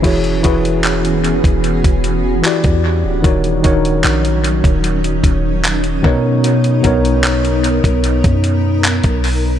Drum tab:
CC |x---------------|----------------|----------------|
HH |xxxxxxxxxxx-xx--|xxxxxxxxxxx-xx--|xxxxxxxxxxx-xxo-|
CP |----x-------x---|----x-------x---|----x-------x---|
BD |o-o----o-o---o--|o-o----o--o---o-|--o----o-o---o--|